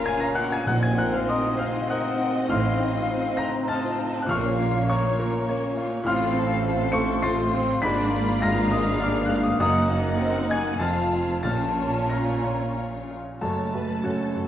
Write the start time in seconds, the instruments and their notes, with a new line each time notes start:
Already playing: grand piano A#2 A#3 C#4 A#4 F5 A#5 C#6 F6 A#6, french horn section C#4 A#4, viola section F4, violin section F5
0.05 grand piano C#4 G#5 G#6, violin section A#4, flute section G#5
0.20 violin section C#5, flute section A#5, grand piano A#5 A#6
0.35 grand piano A#3 F#5 F#6, violin section A#4, flute section F#5
0.50 violin section F4, flute section G#5, grand piano G#5 G#6
0.64 double bass section A#1, cello section A#2, timpani A#2, grand piano A#2 F#6, viola section C4, french horn section C4 D#4, violin section D#4 D#5, flute section F#5
0.69 grand piano F#5
0.80 violin section F#4, flute section G#5, grand piano G#6
0.84 grand piano G#5
0.94 violin section A#4, flute section F#5
0.98 grand piano C4 F#5 F#6
1.10 violin section C5, flute section F5, grand piano F6
1.14 grand piano F5
1.27 grand piano D#4 D#5 C6 D#6, violin section A#4, flute section D#5
1.43 violin section F#4
1.56 violin section D#4, grand piano C5 F6, flute section F5
1.60 grand piano F5
1.76 violin section F#4
1.88 violin section A#4, grand piano D#5 F#5 D#6 F#6, flute section F#5
2.07 violin section C5
2.19 grand piano D#4, violin section A#4
2.33 violin section F#4
2.47 double bass section A1, grand piano A2 F6, cello section A2, violin section A3, flute section F5
2.52 grand piano F5 C6
2.64 violin section C4
2.79 grand piano C4, violin section D#4
2.94 violin section F4
3.09 violin section D#4, grand piano F4
3.24 violin section C4
3.37 violin section A3, grand piano C5 A#5 A#6, flute section A#5
3.52 violin section C4
3.66 violin section D#4, grand piano D#5 A5 F6 A6, flute section A5
3.83 violin section F4
3.98 violin section D#4, grand piano F4
4.15 violin section C4
4.22 grand piano A#2 F#6
4.27 double bass section A#1, cello section A#2, timpani A#2, viola section A#3, violin section A#3 C#5, french horn section F4, flute section F5, grand piano F5 C#6 F6
4.31 french horn section C#4
4.46 violin section C#4
4.59 grand piano A#3, violin section F4
4.77 violin section C#4
4.88 violin section A#3, grand piano F4 C#5 A#5 C#6, flute section C#5
5.05 violin section C#4
5.19 violin section F4, grand piano A#4
5.36 violin section C#4
5.49 violin section A#3, grand piano C#5
5.64 violin section C#4
5.77 grand piano F4, violin section F4
5.91 violin section C#4
6.04 double bass section A1, grand piano A2 C6 F6, cello section A2, french horn section C4, viola section C4, violin section F4 A4, flute section F5
6.08 grand piano F5
6.33 grand piano C4, violin section A4
6.63 viola section A3, grand piano F4, violin section A4 C5
6.92 grand piano C5 C#6 C#7, flute section C#6
7.22 viola section A3, grand piano F4 C6 A6 C7, violin section F4 C5, flute section C6
7.54 grand piano C4, viola section C4
7.82 double bass section G#1, grand piano G#2 B5 B6, cello section G#2, french horn section A#3 D4, viola section D4, violin section F4 D5, flute section B5
8.11 grand piano A#3, viola section A#3
8.41 viola section G#3, grand piano F4 A#5 F6 A#6, violin section F5, flute section A#5
8.70 grand piano A#4 D#5 D#6, flute section D#5
8.99 viola section G#3, violin section D4, grand piano D5 F5 F6, flute section F5
9.03 grand piano D6
9.26 grand piano F4 F#6
9.30 viola section A#3
9.35 grand piano F6
9.43 grand piano D#6
9.52 grand piano F6
9.58 double bass section F#1, cello section F#2, grand piano F#2 D#5 D#6, viola section A#3, french horn section D#4, violin section D#4 F#5, flute section D#5
9.62 grand piano A#5
9.87 grand piano A#3, violin section F#5
10.17 viola section C4, grand piano A#4
10.49 viola section A#3, grand piano D#5 G#5 G#6, flute section G#5
10.79 double bass section F1, cello section F2, grand piano F2 A5 F6 A6, viola section C4, french horn section C4 F4, violin section F4 F5, flute section A5
11.12 viola section C4, grand piano F4 F5
11.43 double bass section A#1, cello section A#2, timpani A#2, grand piano A#2 A5 F6 A6, viola section C#4, french horn section C#4, violin section F4 C#5, flute section A5
11.80 grand piano C#4
12.09 grand piano F4 A#5 F6 A#6, flute section A#5
12.44 grand piano C#5
12.77 grand piano F5
13.11 grand piano F4
13.41 grand piano F#1 F#2 A4 A5, double bass section F#2, viola section A3 F#4, cello section A3, french horn section C#4 F#4, violin section C#5 A5
13.73 double bass section F#2, viola section A3 F#4, violin section B4
14.03 double bass section F#2, viola section A3 F#4, grand piano C#4 F#4 C#5, violin section A4
14.35 double bass section F#2, viola section A3 F#4